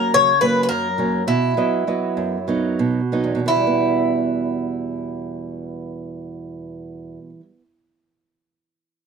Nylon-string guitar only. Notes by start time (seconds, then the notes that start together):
Already playing: F#3 A#3 C#4
0.14 C#3
0.42 F#3 A#3 C#4
0.71 F#2
0.98 F#3 A#3 C#4
1.27 B2
1.57 F#3 B3 D#5
1.87 F#3 B3 D#5
2.17 F#2
2.48 F#3 B3 D#4
2.79 B2
3.12 F#3 B3 D#4
3.24 E2
3.35 B2
3.46 E3
3.56 G3
3.67 B3